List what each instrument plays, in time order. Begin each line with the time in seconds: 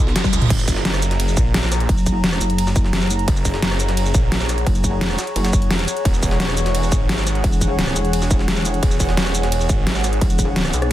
Already playing: wobble bass B1, ambient pad F4 A#4 D#5 A#5, reverse cymbal
0.07 snare
0.16 snare, closed hi-hat
0.24 kick, high tom, shaker
0.33 detuned saw bass C#2, closed hi-hat, shaker
0.42 closed hi-hat, mid tom
0.50 detuned saw bass F#1, ambient pad G#4, kick, closed hi-hat, ride, crash
0.59 shaker
0.68 ambient pad C#5 F#5, kick, closed hi-hat, open hi-hat, shaker
0.76 snare
0.85 detuned saw bass F#1, snare, closed hi-hat, ride
0.94 cross-stick, closed hi-hat, shaker
1.02 closed hi-hat, shaker
1.11 snare, closed hi-hat
1.20 closed hi-hat, ride
1.28 shaker
1.37 detuned saw bass A#1, kick, closed hi-hat, shaker
1.54 snare, closed hi-hat, ride
1.63 snare, shaker
1.72 cross-stick, snare, closed hi-hat, shaker
1.80 closed hi-hat
1.89 wobble bass F#1, kick, closed hi-hat, ride
1.98 shaker
2.06 kick, closed hi-hat, shaker
2.24 snare, closed hi-hat, ride
2.32 cross-stick, shaker
2.41 wobble bass F#1, closed hi-hat, shaker
2.50 closed hi-hat
2.58 closed hi-hat, ride
2.67 snare, shaker
2.76 kick, closed hi-hat, shaker
2.84 snare
2.93 snare, closed hi-hat, ride
3.02 shaker
3.10 closed hi-hat, shaker
3.19 closed hi-hat
3.28 detuned saw bass F#1, kick, closed hi-hat, ride
3.36 shaker
3.45 kick, closed hi-hat, open hi-hat, shaker
3.54 snare
3.62 detuned saw bass F#1, snare, closed hi-hat, ride
3.71 cross-stick, closed hi-hat, shaker
3.80 closed hi-hat, shaker
3.88 snare, closed hi-hat
3.97 closed hi-hat, ride
4.06 shaker
4.14 detuned saw bass A#1, kick, closed hi-hat, shaker
4.32 snare, closed hi-hat, ride
4.41 snare, shaker
4.49 cross-stick, snare, closed hi-hat, shaker
4.58 closed hi-hat
4.67 wobble bass F#1, kick, closed hi-hat, ride
4.75 closed hi-hat, shaker
4.84 kick, closed hi-hat, shaker
5.01 snare, closed hi-hat, ride
5.10 cross-stick, shaker
5.19 snare, closed hi-hat, shaker
5.27 closed hi-hat
5.36 wobble bass F#1, closed hi-hat, ride
5.45 snare, closed hi-hat, shaker
5.53 kick, closed hi-hat, shaker
5.62 closed hi-hat
5.71 snare, closed hi-hat, ride
5.79 closed hi-hat, shaker
5.88 closed hi-hat, shaker
5.97 closed hi-hat
6.05 detuned saw bass E1, kick, closed hi-hat, ride
6.14 shaker
6.23 kick, closed hi-hat, open hi-hat, shaker
6.31 snare
6.40 detuned saw bass E1, snare, closed hi-hat, ride
6.49 cross-stick, closed hi-hat, shaker
6.57 closed hi-hat, shaker
6.66 snare, closed hi-hat
6.75 closed hi-hat, ride
6.83 shaker
6.92 detuned saw bass G#1, kick, closed hi-hat, shaker
7.09 snare, closed hi-hat, ride
7.18 snare, shaker
7.27 cross-stick, snare, closed hi-hat, shaker
7.35 closed hi-hat
7.44 wobble bass E1, kick, closed hi-hat, ride
7.53 shaker
7.61 kick, closed hi-hat, shaker
7.79 snare, closed hi-hat, ride
7.87 cross-stick, shaker
7.96 wobble bass E1, closed hi-hat, shaker
8.05 closed hi-hat
8.13 closed hi-hat, ride
8.22 snare, shaker
8.31 kick, closed hi-hat, shaker
8.39 snare
8.48 snare, closed hi-hat, ride
8.57 shaker
8.65 closed hi-hat, shaker
8.74 closed hi-hat
8.83 detuned saw bass E1, kick, closed hi-hat, ride
8.91 shaker
9.00 kick, closed hi-hat, open hi-hat, shaker
9.09 snare
9.17 detuned saw bass E1, snare, closed hi-hat, ride
9.26 cross-stick, closed hi-hat, shaker
9.35 closed hi-hat, shaker
9.43 snare, closed hi-hat
9.52 closed hi-hat, ride
9.61 shaker
9.69 detuned saw bass G#1, kick, closed hi-hat, shaker
9.87 snare, closed hi-hat, ride
9.95 snare, shaker
10.04 cross-stick, snare, closed hi-hat, shaker
10.13 closed hi-hat
10.21 wobble bass E1, kick, closed hi-hat, ride
10.30 closed hi-hat, shaker
10.39 kick, closed hi-hat, shaker
10.56 snare, closed hi-hat, ride
10.65 cross-stick, shaker
10.73 wobble bass B1, closed hi-hat, shaker
10.82 cross-stick, closed hi-hat